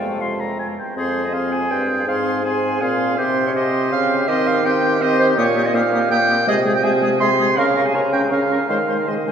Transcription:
Already playing: bassoon F2, french horn G#3, clarinet F4, oboe F5, flute G5
0.20 french horn G#3, clarinet F4, flute F5, oboe C6
0.40 oboe A#5
0.59 oboe G#5
0.79 oboe G5
0.96 bassoon F2, french horn C4, oboe G#4, clarinet C5, flute C6
1.25 clarinet D#5
1.33 french horn C4, oboe G#4, clarinet F5, flute C6
1.52 clarinet G#5
1.70 bassoon G2, clarinet G5
2.07 bassoon G#2, french horn C4, oboe G#4, clarinet F5, flute C6
2.45 french horn C4, oboe G#4, clarinet G#5, flute C6
2.81 bassoon A#2, french horn C4, oboe G#4, clarinet F5, flute C6
3.18 bassoon C3, french horn C4, oboe G4, clarinet C5, flute C6
3.47 clarinet C#5
3.55 french horn C4, oboe G4, clarinet D#5, flute C6
3.92 bassoon C#3, clarinet F5
4.28 bassoon D#3, french horn C4, oboe G4, clarinet D#5, flute C6
4.47 clarinet F5
4.64 french horn C4, oboe G4, clarinet G5, flute C6
5.01 french horn C4, oboe G4, clarinet D#5, flute C6
5.19 clarinet C5
5.37 bassoon A#2, french horn A#3, oboe G4, clarinet C#5, flute D#6
5.56 french horn A#3, oboe G4, flute D#6
5.66 clarinet D#5
5.74 bassoon A#2, french horn A#3, oboe G4, clarinet F5, flute D#6
5.93 french horn A#3, oboe G4, flute D#6
6.11 bassoon A#2, french horn A#3, oboe G4, clarinet G5, flute D#6
6.29 french horn A#3, oboe G4, flute D#6
6.47 bassoon C3, french horn G#3, oboe G#4, clarinet D#5, flute D#6
6.65 french horn G#3, oboe G#4, flute D#6
6.75 clarinet G5
6.83 bassoon C3, french horn G#3, oboe G#4, clarinet G#5, flute D#6
7.02 french horn G#3, oboe G#4, flute D#6
7.20 bassoon C3, french horn G#3, oboe G#4, clarinet C6, flute D#6
7.39 french horn G#3, oboe G#4, flute D#6
7.57 bassoon C#3, french horn C#4, oboe A#4, clarinet F5, flute C#6
7.76 french horn C#4, oboe A#4, flute C#6
7.85 clarinet G#5
7.94 bassoon C#3, french horn C#4, oboe A#4, clarinet A#5, flute C#6
8.12 french horn C#4, oboe A#4, clarinet G5, flute C#6
8.31 bassoon C#3, french horn C#4, oboe A#4, clarinet F5, flute C#6
8.49 french horn C#4, oboe A#4, flute C#6
8.69 bassoon D#3, french horn G#3, oboe C5, clarinet F5, flute C6
8.88 french horn G#3, oboe C5, flute C6
9.07 bassoon D#3, french horn G#3, oboe C5, clarinet D#5, flute C6
9.27 french horn G#3, oboe C5, flute G#5

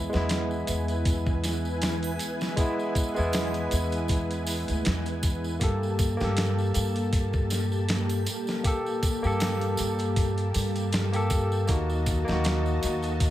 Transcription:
Already playing: tine electric piano G#3 B3 E4, string machine E4 B4 G#5
0.09 tine electric piano G#3 B3, tambourine
0.14 upright bass E2, tine electric piano E4, snare
0.29 snare, open hi-hat, tambourine
0.51 tambourine
0.67 upright bass E2, open hi-hat, tambourine
0.88 closed hi-hat, tambourine
1.05 kick, open hi-hat, tambourine
1.26 kick, tambourine
1.44 snare, open hi-hat, tambourine
1.65 tambourine
1.82 snare, open hi-hat, tambourine
2.03 closed hi-hat, tambourine, triangle
2.19 open hi-hat, tambourine
2.41 snare, tambourine
2.56 tine electric piano G#3 B3 E4, kick, open hi-hat, tambourine
2.79 tambourine
2.95 kick, open hi-hat, tambourine
3.15 upright bass E2, tine electric piano G#3 B3 E4, tambourine
3.33 snare, open hi-hat, tambourine, triangle
3.54 closed hi-hat, tambourine
3.71 upright bass E2, open hi-hat, tambourine
3.92 closed hi-hat, tambourine
4.08 kick, open hi-hat, tambourine
4.31 closed hi-hat, tambourine
4.47 open hi-hat, tambourine
4.68 upright bass D2, closed hi-hat, tambourine
4.85 upright bass E2, snare, open hi-hat, tambourine
5.06 closed hi-hat, tambourine
5.23 kick, open hi-hat, tambourine
5.44 tambourine
5.59 upright bass G2, tine electric piano A#3 G4, string machine A#3 G4 A5, kick, open hi-hat, tambourine
5.63 tine electric piano A4
5.83 tambourine
5.99 kick, open hi-hat, tambourine
6.17 upright bass G2, tine electric piano A#3 G4, tambourine
6.21 tine electric piano A4, snare
6.37 snare, open hi-hat, tambourine
6.58 tambourine
6.74 upright bass G2, open hi-hat, tambourine
6.96 closed hi-hat, tambourine
7.13 kick, open hi-hat, tambourine
7.33 kick, tambourine
7.50 snare, open hi-hat, tambourine
7.72 tambourine
7.89 snare, open hi-hat, tambourine
8.09 closed hi-hat, tambourine, triangle
8.26 open hi-hat, tambourine
8.47 snare, tambourine
8.63 tine electric piano A#3 G4 A4, string machine A5, kick, open hi-hat, tambourine
8.86 tambourine
9.03 kick, open hi-hat, tambourine
9.23 upright bass G2, tine electric piano A#3 G4 A4, tambourine
9.40 snare, open hi-hat, tambourine, triangle
9.61 closed hi-hat, tambourine
9.77 upright bass G2, open hi-hat, tambourine
9.99 closed hi-hat, tambourine
10.16 kick, open hi-hat, tambourine
10.38 closed hi-hat, tambourine
10.54 upright bass G2, open hi-hat, tambourine
10.75 closed hi-hat, tambourine
10.92 snare, open hi-hat, tambourine
11.12 tine electric piano A#3 G4 A4, closed hi-hat, tambourine
11.30 kick, open hi-hat, tambourine
11.52 tambourine
11.67 upright bass D#2, tine electric piano A#3 D#4 F#4, string machine F#4 D#5, kick, open hi-hat, tambourine
11.89 tambourine
12.06 kick, open hi-hat, tambourine
12.24 tine electric piano A#3 D#4, tambourine
12.28 upright bass D#2, tine electric piano F#4, snare
12.44 snare, open hi-hat, tambourine
12.66 tambourine
12.83 upright bass D#2, open hi-hat, tambourine
13.02 closed hi-hat, tambourine
13.20 kick, open hi-hat, tambourine

